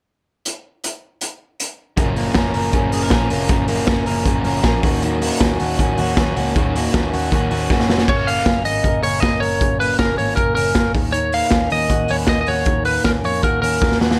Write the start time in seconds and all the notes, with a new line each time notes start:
0.45 closed hi-hat
0.84 closed hi-hat
1.21 closed hi-hat
1.60 closed hi-hat
1.97 F#1 F#2 C#3 F3 A#3 C#4 A#4, kick, closed hi-hat
2.15 F3 A#3 C#4 A#4, open hi-hat
2.34 F#1 F3 A#3 C#4 A#4, kick, snare, closed hi-hat
2.54 F#1 F3 A#3 C#4 A#4, open hi-hat
2.73 F#1 F#2 C#3 F3 A#3 C#4 A#4, kick, closed hi-hat
2.92 F#1 F3 A#3 C#4 G#4 A#4, open hi-hat
3.02 A#4
3.10 A#1 F3 A#3 C#4, kick, snare, closed hi-hat
3.14 A#4
3.30 F1 F3 A#3 C#4 A#4, open hi-hat
3.49 F#1 F#2 C#3 F3 A#3 C#4 A#4, kick, closed hi-hat
3.68 F3 A#3 C#4 A#4, open hi-hat
3.87 F#1 F3 A#3 C#4 A#4, kick, snare, closed hi-hat
4.06 F#1 F3 A#3 C#4 A#4, open hi-hat
4.25 F#1 F#2 C#3 F3 A#3 C#4 A#4, kick, closed hi-hat
4.44 F#1 A#3 C#4 A#4, open hi-hat
4.48 F3
4.64 A#1 F3 A#3 C#4 A#4, kick, snare, closed hi-hat
4.83 D#2 D#3 A#3 C#4 F#4, kick, open hi-hat
5.02 D#3 F#3 A#3 C#4 F#4, closed hi-hat
5.21 A#3 C#4 F#4, open hi-hat
5.40 D#2 F#3 A#3 C#4 F#4, kick, snare, closed hi-hat
5.60 D#2 A#3 C#4 F#4, open hi-hat
5.79 D#2 D#3 F#3 A#3 C#4 F#4, kick, closed hi-hat
5.98 D#2 A#3 C#4 F#4, open hi-hat
6.17 D#2 F#3 A#3 C#4 F#4, kick, snare, closed hi-hat
6.37 C#2 A#3 C#4 F#4, open hi-hat
6.56 D#2 D#3 F#3 A#3 C#4 F#4, kick, closed hi-hat
6.75 A#3 C#4 F#4, open hi-hat
6.93 D#2 F#3 A#3 C#4 F#4, kick, snare, closed hi-hat
7.12 D#2 A#3 C#4 F#4, open hi-hat
7.32 D#2 D#3 F#3 A#3 C#4 F#4, kick, closed hi-hat
7.50 D#2 A#3 C#4 F#4, open hi-hat
7.69 F#2 F#3 A#3 C#4 F#4, kick, snare
7.80 snare
7.88 F1 A#3 C#4 F#4, snare
7.98 snare
8.08 F#1 F#2 C#5, kick, crash
8.27 A#3 F5, open hi-hat
8.46 F#1 C#4, kick, snare, closed hi-hat
8.65 G#1 A#3 D#5, open hi-hat
8.84 F#1 A#4, kick, closed hi-hat
9.03 F#1 C#4 C#5, open hi-hat
9.20 F#1 A#3 D#5, kick, snare, closed hi-hat
9.40 F#1 A#4 C#5, open hi-hat
9.61 F#1 F#2, kick, closed hi-hat
9.80 A#3 B4, open hi-hat
9.99 F#1 C#4 A#4, kick, snare, closed hi-hat
10.18 G#1 A#3 C#5, open hi-hat
10.36 F#1 A#4, kick, closed hi-hat
10.55 F#1 C#4 A#4, open hi-hat
10.75 A#3, kick, snare, closed hi-hat
10.94 D#2 D#3, kick, open hi-hat
11.12 D#3 C#5, closed hi-hat
11.32 A#3 F5, open hi-hat
11.51 D#2 C#4, kick, snare, closed hi-hat
11.70 D#2 A#3 D#5, open hi-hat
11.90 D#2 F#4, kick, closed hi-hat
12.08 D#2 C#4 C#5, open hi-hat
12.27 D#2 A#3 D#5, kick, snare, closed hi-hat
12.41 D#5
12.46 D#2 F#4 C#5, open hi-hat
12.65 D#2 D#3, kick, closed hi-hat
12.85 A#3 B4, open hi-hat
13.04 D#2 C#4 A#4, kick, snare, closed hi-hat
13.24 F2 A#3 C#5, open hi-hat
13.43 D#2 F#4 A#4, kick, closed hi-hat
13.62 D#2 C#4 A#4, open hi-hat
13.82 D#2 A#3, kick, snare
13.92 snare
14.01 D#2 F#4, snare
14.11 snare